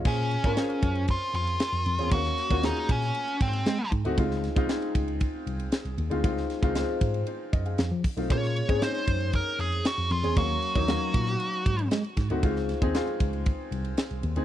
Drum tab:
CC |x---------------|----------------|----------------|----------------|
RD |--xxxxxxx-xxxxxx|xxxxxxxxxxxxx-xx|x-xxxxxxx-xxxxxx|x-xxx-xxx-xxx-xx|
HH |----------------|----------------|----------------|--------------o-|
SD |----o-------o---|-oo-o--o----o---|-oo-o-------o---|-oo-o-------o---|
BD |o--o--o-o-------|o--o--o---o---o-|o--o--o-o-------|o--o--o---o---o-|

CC |----------------|----------------|----------------|
RD |xxxxxxxxx-xxxxxx|x-xxx-xxxxxxxxxx|x-xxxxxxx-xxxxxx|
HH |p---------------|----------------|----------------|
SD |-o--o-------o---|----o--o----o-o-|-oo-o-------o---|
BD |o--o--o-o-------|o--o--o---o---o-|o--o--o-o-------|